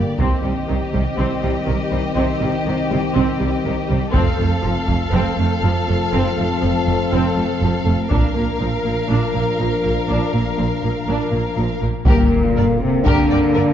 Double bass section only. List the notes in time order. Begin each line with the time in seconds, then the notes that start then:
0.19 C2
0.44 C2
0.69 C2
0.94 C2
1.19 C2
1.43 C2
1.67 C2
1.92 C2
2.16 C2
2.41 C2
2.66 C2
2.91 C2
3.16 C2
3.41 C2
3.65 C2
3.90 C2
4.15 F1
4.41 F1
4.64 F1
4.89 F1
5.13 F1
5.38 F1
5.63 F1
5.89 F1
6.13 F1
6.38 F1
6.63 F1
6.88 F1
7.13 F1
7.37 F1
7.62 F1
7.87 F1
8.12 A#1
8.37 A#1
8.61 A#1
8.86 A#1
9.10 A#1
9.36 A#1
9.61 A#1
9.85 A#1
10.10 A#1
10.34 A#1
10.58 A#1
10.83 A#1
11.07 A#1
11.33 A#1
11.57 A#1
11.81 A#1
12.06 G2
12.56 G2
13.05 G2
13.30 G2
13.54 G2